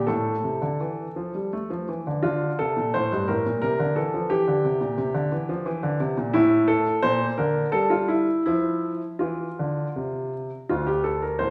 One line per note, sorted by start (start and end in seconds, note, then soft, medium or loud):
0.07 0.34 A2 soft
0.07 1.88 A4 soft
0.44 0.61 C3 soft
0.62 0.79 D3 soft
0.80 1.06 E3 soft
1.16 1.33 F3 soft
1.35 1.51 G3 soft
1.53 1.70 A3 soft
1.70 1.87 F3 soft
1.89 2.05 E3 soft
2.07 2.22 D3 soft
2.23 2.49 D3 soft
2.23 2.58 F4 medium
2.59 2.76 C3 soft
2.59 2.90 A4 medium
2.77 2.93 A#2 soft
2.94 3.11 A2 soft
2.94 3.28 C5 medium
3.12 3.28 G2 soft
3.28 3.45 A2 soft
3.28 3.60 A#4 medium
3.46 3.62 A#2 soft
3.62 3.79 C3 soft
3.62 3.96 A#4 medium
3.79 3.95 D3 soft
3.96 4.12 E3 soft
3.96 4.30 A4 medium
4.14 4.30 F3 soft
4.30 4.47 E3 soft
4.30 5.95 G4 medium
4.48 4.64 D3 soft
4.64 4.80 C3 soft
4.81 4.97 A#2 soft
4.98 5.14 C3 medium
5.14 5.31 D3 medium
5.32 5.48 E3 soft
5.49 5.65 F3 soft
5.66 5.82 E3 medium
5.83 5.99 D3 medium
6.00 6.16 C3 medium
6.17 6.33 A#2 medium
6.33 6.84 A2 medium
6.33 6.68 E4 medium
6.68 6.99 A4 medium
7.03 7.28 A#2 medium
7.03 7.24 C5 medium
7.38 7.64 D3 soft
7.38 7.73 A#4 medium
7.72 8.26 G3 soft
7.72 7.91 A4 medium
7.90 8.09 F4 medium
8.08 8.42 E4 medium
8.46 9.00 F3 soft
8.46 8.91 E4 medium
9.19 9.48 E3 soft
9.19 10.32 F4 soft
9.59 9.86 D3 soft
9.96 10.49 C3 soft
10.69 11.38 D2 soft
10.69 10.87 F4 medium
10.87 11.04 G4 medium
11.04 11.22 A4 medium
11.22 11.40 A#4 soft
11.39 11.50 A2 soft
11.39 11.50 C5 medium